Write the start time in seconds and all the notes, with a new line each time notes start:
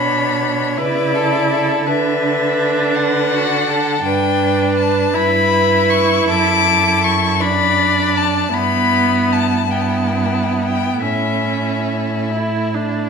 Already playing: B2 D4 C#5 B5
0.78 C#3 E4 B4 D5
1.15 A4
1.50 A4
1.86 D3 D4 B4 E5
2.95 B4 F#5
3.33 F#4
3.69 A4
4.03 G2 D4 B4 G5
4.78 A5
5.14 G2 E4 B4 B5
5.90 C#6
6.28 F#2 A4 D6
7.04 C#6
7.40 D4 D5 B5
8.17 A5
8.53 G2 B3 E4 B5
9.32 A5
9.71 B3 E4 G5
9.81 A5
9.89 G5
9.98 A5
10.07 G5
10.17 A5
10.25 G5
10.34 A5
10.43 G5
10.52 A5
10.63 G5
11.01 A2 C#4 E4 E5
12.33 E4
12.75 D4